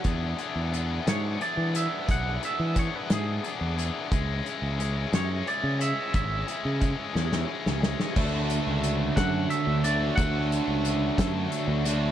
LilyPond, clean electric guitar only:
\new Staff \with { instrumentName = "Clean electric guitar" } { \time 6/8 \key d \lydian \tempo 4. = 59 r4. cis''8 d''8 e''8 | fis''8 e''8 cis''16 b'16 gis'4 r8 | r4. cis''8 d''8 e''8 | e''2 r4 |
r4. fis''8 e''8 d''8 | fis''2 r4 | }